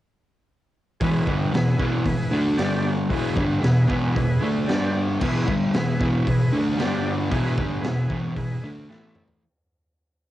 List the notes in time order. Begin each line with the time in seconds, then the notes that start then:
1.00 E2 B2 E3 E4 G#4 B4, kick, open hi-hat
1.27 G2 D3 G3, kick
1.54 E2 B2 E4 G#4 B4, snare, open hi-hat
1.79 E2 B2 E3, kick
2.05 E2 B2 E4 G#4 B4, kick, open hi-hat
2.31 D3 A3 D4
2.57 G2 D3 G3 D4 G4 D5, snare, open hi-hat
3.10 E2 B2 E3 E4 G#4 B4, kick, open hi-hat
3.35 G2 D3 G3, kick
3.61 E2 B2 E4 G#4 B4, snare, open hi-hat
3.87 E2 B2 E3, kick
4.13 E2 B2 E4 G#4 B4, kick
4.17 open hi-hat
4.41 D3 A3 D4
4.66 G2 D3 G3 D4 G4 D5, snare, open hi-hat
5.21 E2 B2 E3 E4 G#4 B4, kick, crash
5.36 snare
5.47 G2 D3 G3, kick
5.74 E2 B2 E4 G#4 B4, snare, open hi-hat
5.99 E2 B2 E3, kick, snare
6.27 E2 B2 E4 G#4 B4, kick, open hi-hat
6.52 D3 A3 D4
6.78 G2 D3 G3 D4 G4 D5, snare, open hi-hat
7.30 E2 B2 E3 E4 G#4 B4, kick, open hi-hat
7.46 snare
7.58 G2 D3 G3, kick
7.80 E2 E4 G#4 B4, open hi-hat
7.85 B2, snare
8.10 E2 B2 E3, kick
8.36 E2 B2 E4 G#4 B4, kick, open hi-hat
8.64 D3 A3 D4
8.89 A2 E3 A3 E4 A4 E5, snare
9.15 mid tom
9.28 floor tom